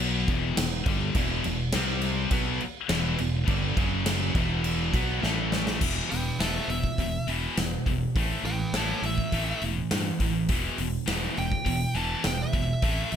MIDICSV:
0, 0, Header, 1, 7, 480
1, 0, Start_track
1, 0, Key_signature, 1, "minor"
1, 0, Tempo, 583658
1, 954, Time_signature, 4, 2, 24, 8
1, 10823, End_track
2, 0, Start_track
2, 0, Title_t, "Lead electric guitar"
2, 0, Program_c, 0, 29
2, 5016, Note_on_c, 0, 71, 76
2, 5020, Note_on_c, 0, 79, 85
2, 5258, Note_off_c, 0, 79, 0
2, 5263, Note_off_c, 0, 71, 0
2, 5265, Note_on_c, 0, 76, 74
2, 5273, Note_on_c, 0, 81, 70
2, 5492, Note_off_c, 0, 76, 0
2, 5503, Note_off_c, 0, 81, 0
2, 5512, Note_on_c, 0, 76, 89
2, 5978, Note_off_c, 0, 76, 0
2, 6952, Note_on_c, 0, 71, 72
2, 6957, Note_on_c, 0, 79, 80
2, 7188, Note_off_c, 0, 79, 0
2, 7194, Note_off_c, 0, 71, 0
2, 7202, Note_on_c, 0, 73, 67
2, 7211, Note_on_c, 0, 81, 83
2, 7422, Note_off_c, 0, 73, 0
2, 7437, Note_off_c, 0, 81, 0
2, 7448, Note_on_c, 0, 76, 103
2, 7909, Note_off_c, 0, 76, 0
2, 9365, Note_on_c, 0, 79, 100
2, 9841, Note_off_c, 0, 79, 0
2, 9841, Note_on_c, 0, 81, 73
2, 10074, Note_off_c, 0, 81, 0
2, 10088, Note_on_c, 0, 79, 98
2, 10201, Note_off_c, 0, 79, 0
2, 10215, Note_on_c, 0, 76, 89
2, 10823, Note_off_c, 0, 76, 0
2, 10823, End_track
3, 0, Start_track
3, 0, Title_t, "Distorted electric guitar"
3, 0, Program_c, 1, 30
3, 0, Note_on_c, 1, 47, 94
3, 0, Note_on_c, 1, 54, 106
3, 0, Note_on_c, 1, 59, 111
3, 232, Note_off_c, 1, 47, 0
3, 238, Note_off_c, 1, 54, 0
3, 239, Note_off_c, 1, 59, 0
3, 247, Note_on_c, 1, 40, 95
3, 253, Note_on_c, 1, 47, 89
3, 259, Note_on_c, 1, 52, 105
3, 466, Note_off_c, 1, 40, 0
3, 474, Note_off_c, 1, 47, 0
3, 476, Note_on_c, 1, 40, 74
3, 480, Note_off_c, 1, 52, 0
3, 483, Note_on_c, 1, 47, 73
3, 667, Note_off_c, 1, 40, 0
3, 671, Note_off_c, 1, 47, 0
3, 704, Note_on_c, 1, 43, 86
3, 713, Note_on_c, 1, 55, 102
3, 714, Note_on_c, 1, 50, 102
3, 941, Note_off_c, 1, 43, 0
3, 946, Note_off_c, 1, 50, 0
3, 946, Note_off_c, 1, 55, 0
3, 948, Note_on_c, 1, 40, 100
3, 951, Note_on_c, 1, 47, 98
3, 951, Note_on_c, 1, 52, 110
3, 1183, Note_off_c, 1, 40, 0
3, 1185, Note_off_c, 1, 47, 0
3, 1185, Note_off_c, 1, 52, 0
3, 1200, Note_on_c, 1, 40, 70
3, 1201, Note_on_c, 1, 47, 75
3, 1388, Note_off_c, 1, 40, 0
3, 1389, Note_off_c, 1, 47, 0
3, 1426, Note_on_c, 1, 48, 93
3, 1430, Note_on_c, 1, 55, 104
3, 1433, Note_on_c, 1, 60, 98
3, 1898, Note_off_c, 1, 48, 0
3, 1898, Note_off_c, 1, 55, 0
3, 1901, Note_on_c, 1, 47, 108
3, 1901, Note_on_c, 1, 54, 102
3, 1904, Note_off_c, 1, 60, 0
3, 1908, Note_on_c, 1, 59, 106
3, 2139, Note_off_c, 1, 47, 0
3, 2139, Note_off_c, 1, 54, 0
3, 2142, Note_off_c, 1, 59, 0
3, 2374, Note_on_c, 1, 40, 105
3, 2381, Note_on_c, 1, 47, 94
3, 2383, Note_on_c, 1, 52, 103
3, 2604, Note_off_c, 1, 40, 0
3, 2612, Note_off_c, 1, 47, 0
3, 2614, Note_on_c, 1, 40, 73
3, 2619, Note_off_c, 1, 52, 0
3, 2622, Note_on_c, 1, 47, 74
3, 2814, Note_off_c, 1, 40, 0
3, 2818, Note_off_c, 1, 47, 0
3, 2839, Note_on_c, 1, 43, 97
3, 2843, Note_on_c, 1, 50, 101
3, 2850, Note_on_c, 1, 55, 104
3, 3087, Note_off_c, 1, 43, 0
3, 3089, Note_off_c, 1, 50, 0
3, 3090, Note_on_c, 1, 42, 81
3, 3093, Note_off_c, 1, 55, 0
3, 3095, Note_on_c, 1, 49, 101
3, 3100, Note_on_c, 1, 54, 99
3, 3572, Note_off_c, 1, 42, 0
3, 3575, Note_off_c, 1, 49, 0
3, 3578, Note_off_c, 1, 54, 0
3, 3582, Note_on_c, 1, 40, 92
3, 3585, Note_on_c, 1, 47, 101
3, 3591, Note_on_c, 1, 52, 102
3, 4052, Note_off_c, 1, 47, 0
3, 4058, Note_off_c, 1, 40, 0
3, 4061, Note_off_c, 1, 52, 0
3, 4062, Note_on_c, 1, 47, 100
3, 4064, Note_on_c, 1, 54, 97
3, 4074, Note_on_c, 1, 59, 105
3, 4298, Note_off_c, 1, 47, 0
3, 4300, Note_off_c, 1, 54, 0
3, 4304, Note_off_c, 1, 59, 0
3, 4313, Note_on_c, 1, 45, 95
3, 4314, Note_on_c, 1, 52, 92
3, 4317, Note_on_c, 1, 57, 97
3, 4784, Note_off_c, 1, 45, 0
3, 4785, Note_off_c, 1, 52, 0
3, 4786, Note_off_c, 1, 57, 0
3, 4787, Note_on_c, 1, 40, 87
3, 4792, Note_on_c, 1, 47, 89
3, 4795, Note_on_c, 1, 52, 87
3, 5014, Note_off_c, 1, 40, 0
3, 5015, Note_off_c, 1, 47, 0
3, 5018, Note_off_c, 1, 52, 0
3, 5024, Note_on_c, 1, 40, 72
3, 5025, Note_on_c, 1, 47, 74
3, 5243, Note_off_c, 1, 40, 0
3, 5244, Note_off_c, 1, 47, 0
3, 5266, Note_on_c, 1, 40, 90
3, 5267, Note_on_c, 1, 47, 91
3, 5274, Note_on_c, 1, 52, 95
3, 5494, Note_off_c, 1, 40, 0
3, 5495, Note_off_c, 1, 47, 0
3, 5498, Note_off_c, 1, 52, 0
3, 5511, Note_on_c, 1, 40, 80
3, 5512, Note_on_c, 1, 47, 69
3, 5728, Note_off_c, 1, 40, 0
3, 5728, Note_off_c, 1, 47, 0
3, 5757, Note_on_c, 1, 40, 72
3, 5758, Note_on_c, 1, 47, 77
3, 5971, Note_off_c, 1, 40, 0
3, 5971, Note_off_c, 1, 47, 0
3, 5981, Note_on_c, 1, 40, 86
3, 5984, Note_on_c, 1, 47, 92
3, 5992, Note_on_c, 1, 52, 89
3, 6213, Note_off_c, 1, 40, 0
3, 6214, Note_off_c, 1, 47, 0
3, 6218, Note_off_c, 1, 52, 0
3, 6239, Note_on_c, 1, 40, 75
3, 6244, Note_on_c, 1, 47, 77
3, 6452, Note_off_c, 1, 40, 0
3, 6455, Note_off_c, 1, 47, 0
3, 6471, Note_on_c, 1, 40, 61
3, 6479, Note_on_c, 1, 47, 74
3, 6688, Note_off_c, 1, 40, 0
3, 6693, Note_off_c, 1, 47, 0
3, 6712, Note_on_c, 1, 45, 81
3, 6715, Note_on_c, 1, 52, 91
3, 6716, Note_on_c, 1, 57, 89
3, 6935, Note_off_c, 1, 45, 0
3, 6940, Note_off_c, 1, 52, 0
3, 6941, Note_off_c, 1, 57, 0
3, 6945, Note_on_c, 1, 45, 71
3, 6952, Note_on_c, 1, 52, 74
3, 7166, Note_off_c, 1, 45, 0
3, 7170, Note_off_c, 1, 52, 0
3, 7204, Note_on_c, 1, 52, 86
3, 7205, Note_on_c, 1, 45, 95
3, 7206, Note_on_c, 1, 57, 92
3, 7425, Note_off_c, 1, 52, 0
3, 7426, Note_off_c, 1, 45, 0
3, 7427, Note_off_c, 1, 57, 0
3, 7441, Note_on_c, 1, 45, 66
3, 7443, Note_on_c, 1, 52, 73
3, 7655, Note_off_c, 1, 45, 0
3, 7656, Note_off_c, 1, 52, 0
3, 7673, Note_on_c, 1, 45, 82
3, 7679, Note_on_c, 1, 52, 95
3, 7681, Note_on_c, 1, 57, 94
3, 7901, Note_off_c, 1, 45, 0
3, 7904, Note_off_c, 1, 52, 0
3, 7904, Note_off_c, 1, 57, 0
3, 7911, Note_on_c, 1, 45, 73
3, 7921, Note_on_c, 1, 52, 76
3, 8130, Note_off_c, 1, 45, 0
3, 8135, Note_off_c, 1, 52, 0
3, 8149, Note_on_c, 1, 45, 77
3, 8149, Note_on_c, 1, 52, 85
3, 8370, Note_off_c, 1, 45, 0
3, 8370, Note_off_c, 1, 52, 0
3, 8396, Note_on_c, 1, 45, 68
3, 8404, Note_on_c, 1, 52, 82
3, 8613, Note_off_c, 1, 45, 0
3, 8617, Note_off_c, 1, 52, 0
3, 8628, Note_on_c, 1, 40, 81
3, 8635, Note_on_c, 1, 52, 90
3, 8638, Note_on_c, 1, 47, 96
3, 8859, Note_off_c, 1, 40, 0
3, 8863, Note_off_c, 1, 52, 0
3, 8864, Note_off_c, 1, 47, 0
3, 8876, Note_on_c, 1, 40, 75
3, 8882, Note_on_c, 1, 47, 72
3, 9088, Note_off_c, 1, 40, 0
3, 9092, Note_off_c, 1, 47, 0
3, 9098, Note_on_c, 1, 40, 96
3, 9102, Note_on_c, 1, 47, 103
3, 9103, Note_on_c, 1, 52, 101
3, 9330, Note_off_c, 1, 40, 0
3, 9337, Note_off_c, 1, 47, 0
3, 9337, Note_off_c, 1, 52, 0
3, 9340, Note_on_c, 1, 40, 74
3, 9347, Note_on_c, 1, 47, 81
3, 9566, Note_off_c, 1, 40, 0
3, 9570, Note_off_c, 1, 47, 0
3, 9579, Note_on_c, 1, 40, 76
3, 9586, Note_on_c, 1, 47, 78
3, 9806, Note_off_c, 1, 40, 0
3, 9809, Note_off_c, 1, 47, 0
3, 9826, Note_on_c, 1, 40, 84
3, 9828, Note_on_c, 1, 47, 89
3, 9834, Note_on_c, 1, 52, 105
3, 10059, Note_off_c, 1, 40, 0
3, 10060, Note_off_c, 1, 47, 0
3, 10063, Note_off_c, 1, 52, 0
3, 10077, Note_on_c, 1, 40, 75
3, 10081, Note_on_c, 1, 47, 88
3, 10295, Note_off_c, 1, 40, 0
3, 10297, Note_off_c, 1, 47, 0
3, 10309, Note_on_c, 1, 40, 64
3, 10313, Note_on_c, 1, 47, 72
3, 10531, Note_off_c, 1, 40, 0
3, 10533, Note_off_c, 1, 47, 0
3, 10551, Note_on_c, 1, 52, 84
3, 10554, Note_on_c, 1, 45, 85
3, 10558, Note_on_c, 1, 57, 93
3, 10777, Note_off_c, 1, 45, 0
3, 10782, Note_off_c, 1, 52, 0
3, 10785, Note_off_c, 1, 57, 0
3, 10787, Note_on_c, 1, 45, 64
3, 10796, Note_on_c, 1, 52, 85
3, 10823, Note_off_c, 1, 45, 0
3, 10823, Note_off_c, 1, 52, 0
3, 10823, End_track
4, 0, Start_track
4, 0, Title_t, "Fingered electric bass"
4, 0, Program_c, 2, 33
4, 0, Note_on_c, 2, 35, 94
4, 201, Note_off_c, 2, 35, 0
4, 229, Note_on_c, 2, 28, 100
4, 455, Note_off_c, 2, 28, 0
4, 468, Note_on_c, 2, 28, 89
4, 694, Note_off_c, 2, 28, 0
4, 708, Note_on_c, 2, 31, 110
4, 934, Note_off_c, 2, 31, 0
4, 945, Note_on_c, 2, 28, 97
4, 1172, Note_off_c, 2, 28, 0
4, 1196, Note_on_c, 2, 28, 87
4, 1417, Note_off_c, 2, 28, 0
4, 1436, Note_on_c, 2, 36, 101
4, 1880, Note_off_c, 2, 36, 0
4, 1898, Note_on_c, 2, 35, 114
4, 2127, Note_off_c, 2, 35, 0
4, 2384, Note_on_c, 2, 28, 106
4, 2610, Note_off_c, 2, 28, 0
4, 2627, Note_on_c, 2, 28, 77
4, 2852, Note_off_c, 2, 28, 0
4, 2858, Note_on_c, 2, 31, 100
4, 3086, Note_off_c, 2, 31, 0
4, 3096, Note_on_c, 2, 30, 97
4, 3550, Note_off_c, 2, 30, 0
4, 3575, Note_on_c, 2, 28, 97
4, 4030, Note_off_c, 2, 28, 0
4, 4054, Note_on_c, 2, 35, 102
4, 4284, Note_off_c, 2, 35, 0
4, 4303, Note_on_c, 2, 33, 102
4, 4754, Note_off_c, 2, 33, 0
4, 4782, Note_on_c, 2, 28, 97
4, 4938, Note_off_c, 2, 28, 0
4, 5031, Note_on_c, 2, 28, 79
4, 5185, Note_off_c, 2, 28, 0
4, 5255, Note_on_c, 2, 28, 93
4, 5414, Note_off_c, 2, 28, 0
4, 5493, Note_on_c, 2, 28, 79
4, 5653, Note_off_c, 2, 28, 0
4, 5743, Note_on_c, 2, 28, 97
4, 5900, Note_off_c, 2, 28, 0
4, 5976, Note_on_c, 2, 28, 78
4, 6135, Note_off_c, 2, 28, 0
4, 6229, Note_on_c, 2, 28, 91
4, 6384, Note_off_c, 2, 28, 0
4, 6467, Note_on_c, 2, 28, 84
4, 6623, Note_off_c, 2, 28, 0
4, 6704, Note_on_c, 2, 33, 94
4, 6861, Note_off_c, 2, 33, 0
4, 6936, Note_on_c, 2, 33, 88
4, 7096, Note_off_c, 2, 33, 0
4, 7179, Note_on_c, 2, 33, 91
4, 7339, Note_off_c, 2, 33, 0
4, 7420, Note_on_c, 2, 33, 82
4, 7579, Note_off_c, 2, 33, 0
4, 7671, Note_on_c, 2, 33, 100
4, 7827, Note_off_c, 2, 33, 0
4, 7908, Note_on_c, 2, 28, 95
4, 8065, Note_off_c, 2, 28, 0
4, 8154, Note_on_c, 2, 43, 85
4, 8309, Note_off_c, 2, 43, 0
4, 8383, Note_on_c, 2, 33, 83
4, 8629, Note_on_c, 2, 28, 82
4, 8641, Note_off_c, 2, 33, 0
4, 8786, Note_off_c, 2, 28, 0
4, 8867, Note_on_c, 2, 28, 79
4, 9025, Note_off_c, 2, 28, 0
4, 9111, Note_on_c, 2, 28, 90
4, 9268, Note_off_c, 2, 28, 0
4, 9357, Note_on_c, 2, 28, 81
4, 9512, Note_off_c, 2, 28, 0
4, 9585, Note_on_c, 2, 28, 104
4, 9744, Note_off_c, 2, 28, 0
4, 9826, Note_on_c, 2, 28, 92
4, 9984, Note_off_c, 2, 28, 0
4, 10071, Note_on_c, 2, 28, 90
4, 10228, Note_off_c, 2, 28, 0
4, 10307, Note_on_c, 2, 28, 98
4, 10465, Note_off_c, 2, 28, 0
4, 10544, Note_on_c, 2, 33, 95
4, 10703, Note_off_c, 2, 33, 0
4, 10791, Note_on_c, 2, 33, 77
4, 10823, Note_off_c, 2, 33, 0
4, 10823, End_track
5, 0, Start_track
5, 0, Title_t, "Muted distorted electric guitar strokes"
5, 2142, Note_on_c, 9, 29, 62
5, 2224, Note_off_c, 9, 29, 0
5, 10823, End_track
6, 0, Start_track
6, 0, Title_t, "Muted overdriven electric guitar strokes"
6, 2153, Note_on_c, 9, 29, 66
6, 2235, Note_off_c, 9, 29, 0
6, 10823, End_track
7, 0, Start_track
7, 0, Title_t, "Drums"
7, 229, Note_on_c, 9, 49, 50
7, 231, Note_on_c, 9, 36, 94
7, 311, Note_off_c, 9, 49, 0
7, 313, Note_off_c, 9, 36, 0
7, 469, Note_on_c, 9, 49, 93
7, 472, Note_on_c, 9, 38, 121
7, 552, Note_off_c, 9, 49, 0
7, 554, Note_off_c, 9, 38, 0
7, 707, Note_on_c, 9, 49, 74
7, 708, Note_on_c, 9, 36, 114
7, 789, Note_off_c, 9, 49, 0
7, 790, Note_off_c, 9, 36, 0
7, 942, Note_on_c, 9, 49, 86
7, 946, Note_on_c, 9, 36, 112
7, 1025, Note_off_c, 9, 49, 0
7, 1028, Note_off_c, 9, 36, 0
7, 1185, Note_on_c, 9, 49, 68
7, 1267, Note_off_c, 9, 49, 0
7, 1417, Note_on_c, 9, 49, 89
7, 1419, Note_on_c, 9, 38, 115
7, 1499, Note_off_c, 9, 49, 0
7, 1501, Note_off_c, 9, 38, 0
7, 1656, Note_on_c, 9, 49, 68
7, 1739, Note_off_c, 9, 49, 0
7, 1897, Note_on_c, 9, 49, 78
7, 1902, Note_on_c, 9, 36, 108
7, 1980, Note_off_c, 9, 49, 0
7, 1984, Note_off_c, 9, 36, 0
7, 2142, Note_on_c, 9, 49, 52
7, 2224, Note_off_c, 9, 49, 0
7, 2376, Note_on_c, 9, 49, 83
7, 2379, Note_on_c, 9, 38, 107
7, 2458, Note_off_c, 9, 49, 0
7, 2461, Note_off_c, 9, 38, 0
7, 2619, Note_on_c, 9, 49, 59
7, 2701, Note_off_c, 9, 49, 0
7, 2858, Note_on_c, 9, 49, 79
7, 2860, Note_on_c, 9, 36, 105
7, 2940, Note_off_c, 9, 49, 0
7, 2943, Note_off_c, 9, 36, 0
7, 3100, Note_on_c, 9, 36, 110
7, 3101, Note_on_c, 9, 49, 64
7, 3183, Note_off_c, 9, 36, 0
7, 3184, Note_off_c, 9, 49, 0
7, 3337, Note_on_c, 9, 49, 90
7, 3340, Note_on_c, 9, 38, 119
7, 3419, Note_off_c, 9, 49, 0
7, 3422, Note_off_c, 9, 38, 0
7, 3578, Note_on_c, 9, 36, 108
7, 3580, Note_on_c, 9, 49, 62
7, 3660, Note_off_c, 9, 36, 0
7, 3662, Note_off_c, 9, 49, 0
7, 3817, Note_on_c, 9, 49, 78
7, 3899, Note_off_c, 9, 49, 0
7, 4059, Note_on_c, 9, 36, 93
7, 4059, Note_on_c, 9, 49, 61
7, 4141, Note_off_c, 9, 36, 0
7, 4142, Note_off_c, 9, 49, 0
7, 4303, Note_on_c, 9, 38, 68
7, 4386, Note_off_c, 9, 38, 0
7, 4541, Note_on_c, 9, 38, 96
7, 4624, Note_off_c, 9, 38, 0
7, 4663, Note_on_c, 9, 38, 102
7, 4746, Note_off_c, 9, 38, 0
7, 4779, Note_on_c, 9, 36, 108
7, 4780, Note_on_c, 9, 57, 114
7, 4861, Note_off_c, 9, 36, 0
7, 4862, Note_off_c, 9, 57, 0
7, 5027, Note_on_c, 9, 46, 63
7, 5109, Note_off_c, 9, 46, 0
7, 5265, Note_on_c, 9, 46, 78
7, 5267, Note_on_c, 9, 38, 112
7, 5347, Note_off_c, 9, 46, 0
7, 5349, Note_off_c, 9, 38, 0
7, 5505, Note_on_c, 9, 46, 53
7, 5588, Note_off_c, 9, 46, 0
7, 5622, Note_on_c, 9, 36, 89
7, 5704, Note_off_c, 9, 36, 0
7, 5743, Note_on_c, 9, 36, 90
7, 5747, Note_on_c, 9, 46, 69
7, 5825, Note_off_c, 9, 36, 0
7, 5829, Note_off_c, 9, 46, 0
7, 5985, Note_on_c, 9, 46, 48
7, 6067, Note_off_c, 9, 46, 0
7, 6227, Note_on_c, 9, 46, 73
7, 6230, Note_on_c, 9, 38, 110
7, 6310, Note_off_c, 9, 46, 0
7, 6312, Note_off_c, 9, 38, 0
7, 6466, Note_on_c, 9, 36, 78
7, 6469, Note_on_c, 9, 46, 53
7, 6549, Note_off_c, 9, 36, 0
7, 6551, Note_off_c, 9, 46, 0
7, 6708, Note_on_c, 9, 36, 113
7, 6709, Note_on_c, 9, 46, 72
7, 6790, Note_off_c, 9, 36, 0
7, 6792, Note_off_c, 9, 46, 0
7, 6950, Note_on_c, 9, 46, 55
7, 7032, Note_off_c, 9, 46, 0
7, 7184, Note_on_c, 9, 46, 72
7, 7187, Note_on_c, 9, 38, 108
7, 7267, Note_off_c, 9, 46, 0
7, 7269, Note_off_c, 9, 38, 0
7, 7428, Note_on_c, 9, 46, 55
7, 7511, Note_off_c, 9, 46, 0
7, 7547, Note_on_c, 9, 36, 83
7, 7630, Note_off_c, 9, 36, 0
7, 7667, Note_on_c, 9, 46, 78
7, 7668, Note_on_c, 9, 36, 90
7, 7749, Note_off_c, 9, 46, 0
7, 7750, Note_off_c, 9, 36, 0
7, 7907, Note_on_c, 9, 46, 47
7, 7989, Note_off_c, 9, 46, 0
7, 8148, Note_on_c, 9, 46, 82
7, 8150, Note_on_c, 9, 38, 108
7, 8230, Note_off_c, 9, 46, 0
7, 8232, Note_off_c, 9, 38, 0
7, 8387, Note_on_c, 9, 46, 67
7, 8388, Note_on_c, 9, 36, 84
7, 8469, Note_off_c, 9, 46, 0
7, 8470, Note_off_c, 9, 36, 0
7, 8622, Note_on_c, 9, 46, 87
7, 8628, Note_on_c, 9, 36, 105
7, 8705, Note_off_c, 9, 46, 0
7, 8710, Note_off_c, 9, 36, 0
7, 8865, Note_on_c, 9, 46, 62
7, 8948, Note_off_c, 9, 46, 0
7, 9107, Note_on_c, 9, 46, 79
7, 9110, Note_on_c, 9, 38, 113
7, 9189, Note_off_c, 9, 46, 0
7, 9192, Note_off_c, 9, 38, 0
7, 9352, Note_on_c, 9, 46, 53
7, 9434, Note_off_c, 9, 46, 0
7, 9471, Note_on_c, 9, 36, 89
7, 9553, Note_off_c, 9, 36, 0
7, 9587, Note_on_c, 9, 46, 75
7, 9590, Note_on_c, 9, 36, 92
7, 9670, Note_off_c, 9, 46, 0
7, 9672, Note_off_c, 9, 36, 0
7, 9828, Note_on_c, 9, 46, 43
7, 9910, Note_off_c, 9, 46, 0
7, 10064, Note_on_c, 9, 46, 75
7, 10067, Note_on_c, 9, 38, 110
7, 10147, Note_off_c, 9, 46, 0
7, 10149, Note_off_c, 9, 38, 0
7, 10304, Note_on_c, 9, 46, 51
7, 10308, Note_on_c, 9, 36, 88
7, 10386, Note_off_c, 9, 46, 0
7, 10390, Note_off_c, 9, 36, 0
7, 10544, Note_on_c, 9, 46, 74
7, 10547, Note_on_c, 9, 36, 107
7, 10626, Note_off_c, 9, 46, 0
7, 10630, Note_off_c, 9, 36, 0
7, 10786, Note_on_c, 9, 46, 57
7, 10823, Note_off_c, 9, 46, 0
7, 10823, End_track
0, 0, End_of_file